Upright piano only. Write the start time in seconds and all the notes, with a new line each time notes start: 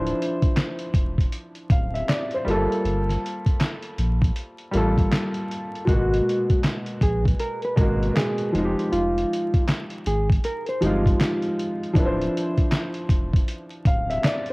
Already playing: F3 D4 E4 C5
1.72 F5
1.94 E5
2.08 D5
2.34 C5
2.45 G3 A#3 F4
2.50 A4
4.71 G3 A#3 F4
4.77 A4
5.85 A#2 G#3 A#3
5.90 B2 F#4
7.76 B2 G#3 A#3
7.81 F#4
8.52 F3 G#3 D#4
8.58 F4
8.64 G4
10.81 F3 G#3 D#4
10.86 F4
11.93 F3 D4 E4
11.99 B4
12.05 C5
13.87 F5
14.10 E5
14.24 D5